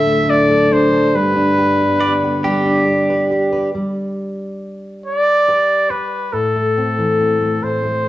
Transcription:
Already playing: D2 A2 D3 F#3 A4 E5
0.06 A3
0.28 D4 D5
0.51 A4
0.71 D4 C5
0.93 A4
1.14 G2 D3 G3 B3 G4 B4
1.36 D4
1.58 G4
1.81 G4
2.01 G4 D5
2.24 G4
2.44 G3 G4
2.65 D4
2.88 G4
3.10 B4
3.31 G4
3.53 B4
3.75 G3
5.06 D5
5.48 G4 B4
5.90 B4
6.33 A2 A4
6.55 A3
6.78 C4
6.99 E3
7.21 C4
7.42 A3
7.63 A2 C5
7.85 A3

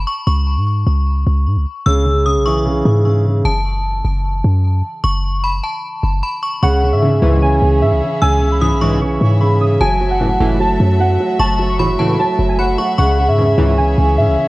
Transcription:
0.07 C#6
0.27 C#2 C#6
0.57 G#2
0.87 C#2
1.27 C#2
1.46 G#2
1.56 C#2
1.86 C#2 C#3 E6
2.05 C#3
2.25 C#3 D#6
2.36 B1
2.46 E3 C#6
2.65 C#3
2.85 G#2 C#3
3.05 C#3
3.25 C#3
3.45 F#1 A5
4.05 F#1
4.44 F#2
5.04 F#1 C#6
5.44 B5
5.63 A5
6.03 F#1
6.23 B5
6.43 C#6
6.63 C#2 C#3 C#4 G#4 E5 F#5 C#6
6.83 C#3
6.93 G#2 E5
7.02 G#1 E2 C#3
7.22 C#2 G#2 E3
7.42 C#3 G#5
7.62 C#2 C#3
7.81 G#2 C#3 E5
7.92 C#2
8.02 C#3
8.21 C#2 C#3 G#5 E6
8.41 C#3
8.52 B5
8.61 C#2 G#2 C#3 E3 D#6
8.72 B1
8.81 C#2 G#2 E3 C#6
9.01 C#3 C#6
9.21 G#2 C#3
9.41 C#3 B5
9.61 C#3 D#6
9.81 F#1 F#3 A3 F#4 G#5 A5
10.01 F#3
10.11 F#5
10.20 C#2 A2 E3 F#3
10.40 F#1 C#2 A2 E3 A3
10.60 F#3 A5
10.80 F#2 F#3
11.00 F#3 F#5
11.20 F#3
11.39 F#1 F#3 A5 C#6
11.59 F#3
11.70 C#6
11.79 C#2 A2 E3 F#3 B5
11.99 C#2 A2 E3 A3 A5
12.19 F#3 A5
12.39 F#1 F#3
12.49 G#5
12.59 F#3 F#5 B5
12.78 F#3 C#6
12.98 C#2 C#3 C#4 G#4 F#5 C#6
13.18 C#3
13.28 G#2 E5
13.38 G#1 E2 C#3
13.58 C#2 G#2 E3
13.78 C#3 G#5
13.98 C#2 C#3
14.17 G#2 C#3 E5
14.28 C#2
14.38 C#3

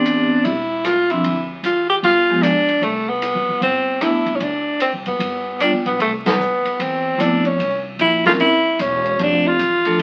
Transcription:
Already playing: A1 B3 C4 D4 G4
0.05 hi-hat pedal, ride
0.45 E1 E4, ride
0.85 F4, cross-stick, hi-hat pedal, ride
1.10 F3 C4 D4 E4, ride
1.24 D2, ride
1.63 A1 F4, hi-hat pedal, ride
1.90 G4
2.03 G1 F4, ride
2.30 F3 G#3 B3 G4
2.43 D4, cross-stick, hi-hat pedal, ride
2.69 ride
2.81 C2 A3, ride
3.09 B3
3.22 hi-hat pedal, ride
3.35 D2
3.49 C#2
3.61 G1 C4, ride
4.01 A3 B3 D4 E4, cross-stick, hi-hat pedal, ride
4.26 C2, ride
4.36 C#4
4.40 D2 D4, ride
4.80 C4, hi-hat pedal, ride
4.93 C2
5.06 F#1 B3, ride
5.19 G1, ride
5.60 G3 B3 D4 F4, cross-stick, hi-hat pedal, ride
5.72 D2
5.86 B1 B3, ride
5.99 C2 A3, ride
6.26 B3, snare, ride
6.39 D2, hi-hat pedal
6.65 muted upright bass stroke, ride
6.79 E2 C4, ride
7.18 F2 A3 B3 D4 E4, hi-hat pedal, ride
7.45 C#4, ride
7.59 C2, ride
7.99 A#1 E4, hi-hat pedal, ride
8.24 C4 C#4 E4 F4 A#4, snare, ride
8.40 G1 E4, ride
8.79 E1 C#4, hi-hat pedal, ride
9.05 ride
9.19 F1 F3 A3 D4 G4, ride
9.48 F4
9.59 A1, hi-hat pedal, ride
9.85 F3 A3 D4 A4, ride

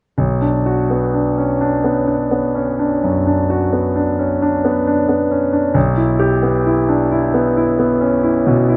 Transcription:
0.18 B1
0.41 D4
0.66 F#4
0.90 B3
1.14 D4
1.38 C#4
1.61 D4
1.84 B3
2.07 D4
2.31 B3
2.55 C#4
2.79 D4
3.04 F#2
3.27 D4
3.50 F#4
3.73 B3
3.96 D4
4.19 C#4
4.42 D4
4.65 B3
4.87 D4
5.09 B3
5.31 C#4
5.53 D4
5.74 B1
5.97 E4
6.19 G4
6.43 B3
6.66 E4
6.89 D4
7.12 E4
7.34 B3
7.57 E4
7.79 B3
8.01 C#4
8.23 E4
8.46 B2
8.69 E4

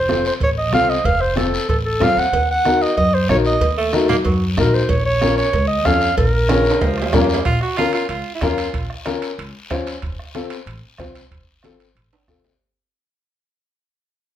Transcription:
Already playing: F1 C5
0.09 C4 F4 A4, bombo rim, high conga, short guiro
0.25 C5, short guiro
0.40 A1 C#5, bombo low, cowbell, high conga, long guiro
0.58 D#5
0.72 C2 C4 F4 A4 F5, bombo rim, high conga, short guiro
0.90 D#5, short guiro
1.04 F1 F5, bombo low, cowbell, high conga, long guiro
1.21 C5
1.36 C4 F4 A4, bombo rim, high conga, short guiro
1.54 short guiro
1.69 A1 A4, bombo low, cowbell, high conga, long guiro
1.85 A4
2.00 F2 C4 F4 A4 F5, bombo rim, high conga, low conga, low timbale, short guiro
2.17 D#2 F#5, short guiro
2.33 D#2, bombo low, cowbell, high conga, long guiro
2.51 F#5
2.65 D#4 F#4 A#4, bombo rim, high conga, short guiro
2.81 D#5, short guiro
2.97 F#2 D#5, bombo low, cowbell, high conga, long guiro
3.15 C5
3.29 A#1 D#4 F#4 A#4 C#5, bombo rim, high conga, short guiro
3.45 D#5, short guiro
3.61 D#2, bombo low, cowbell, high conga, long guiro
3.78 A3
3.92 D#4 F#4 A#4, bombo rim, high conga, short guiro
4.08 A#3, low conga, short guiro
4.24 F#2 F#3, bombo low, cowbell, high conga, long guiro
4.57 A#1 D#4 F#4 A#4, bombo low, bombo rim, high conga, low conga, short guiro
4.74 C5, short guiro
4.89 A#1 C#5, bombo low, cowbell, high conga, long guiro
5.06 C#5
5.21 C#4 F4 A#4, bombo rim, high conga, short guiro
5.38 C#5, short guiro
5.53 C#2, bombo low, cowbell, high conga, long guiro
5.68 D#5
5.85 F2 C#4 F4 A4 F5, bombo low, bombo rim, high conga, low timbale, short guiro
6.01 short guiro
6.17 A#1 A#4, bombo low, cowbell, high conga, long guiro
6.49 C#3 C#4 F4 A#4, bombo rim, high conga, high timbale, short guiro
6.65 short guiro
6.71 high timbale
6.81 C#2 F3, bombo low, cowbell, high conga, low timbale, long guiro
6.98 bombo rim
7.02 low timbale
7.13 F2 A#3 C#4 F4 A#4, bombo low, bombo rim, high conga, low conga, low timbale, short guiro
7.24 low timbale
7.29 short guiro
7.34 low timbale
7.45 A#1 F4, bombo low, high conga, high timbale, long guiro
7.61 F#4, bombo rim
7.77 C#4 F4 A#4, bombo rim, high conga, high timbale, short guiro
7.93 F4, high timbale, short guiro
8.09 C#2 F4, high conga, high timbale, long guiro
8.35 F4
8.41 F2 C#4 F4 A#4, bombo low, bombo rim, high conga, high timbale, low timbale, short guiro
8.58 high timbale, short guiro
8.73 A#1, bombo low, high conga, high timbale, long guiro
8.90 bombo rim
9.06 C#4 F4 A#4, bombo rim, high conga, high timbale, short guiro
9.22 high timbale, short guiro
9.38 C#2, high conga, high timbale, long guiro
9.70 F2 C#4 F4 C5, bombo low, bombo rim, high conga, high timbale, low timbale, short guiro
9.87 high timbale, short guiro
10.02 F1, bombo low, high conga, high timbale, long guiro
10.19 bombo rim
10.35 C4 F4 A4, bombo rim, high conga, high timbale, short guiro
10.50 high timbale, short guiro
10.66 A1, high conga, high timbale, long guiro
10.98 C2 C4 F4 C5, bombo low, bombo rim, high conga, high timbale, low timbale, short guiro
11.15 high timbale, short guiro
11.31 F1, bombo low, high conga, high timbale, long guiro
11.63 C4 F4 A4, bombo rim, high conga, high timbale, short guiro
11.80 high timbale, short guiro
11.95 A1, high conga, high timbale, long guiro
12.13 high timbale
12.28 C2 C4 F4 A4, bombo low, bombo rim, high conga, short guiro
12.44 low timbale, short guiro

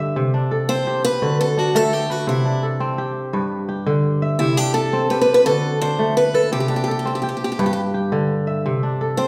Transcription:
Already playing: G2 D3 G4 B4
0.00 E5
0.16 C3
0.34 D4
0.51 A4
0.69 C4 C5
0.87 G4
1.05 B4
1.22 D3 F#4
1.41 A4
1.57 D4 F#4
1.75 A3 A4
1.93 G4
2.10 F#4 B4
2.27 C3 E4
2.45 D4
2.63 A4
2.80 C4
2.98 G4
3.33 G2 B4
3.69 G4
3.86 D3
4.22 E5
4.39 C3 E4
4.57 D4 G4
4.74 A4
4.93 C4
5.10 G4 B4
5.21 B4
5.34 B4
5.46 D3 F#4 A4
5.82 D4 C5
5.99 A3
6.17 B4
6.34 A4 B4
6.52 C3 G4
6.60 G4
6.68 D4 G4
6.76 G4
6.84 G4
6.88 G4 A4
6.99 G4
7.05 C4 G4
7.15 G4
7.22 G4
7.29 G4
7.37 G4
7.44 G4
7.52 G4
7.59 G2 G4 B4
7.66 G4
7.73 G4
7.94 G4
8.12 D3
8.47 E5
8.66 C3
8.83 D4
9.01 A4
9.17 C4 C5

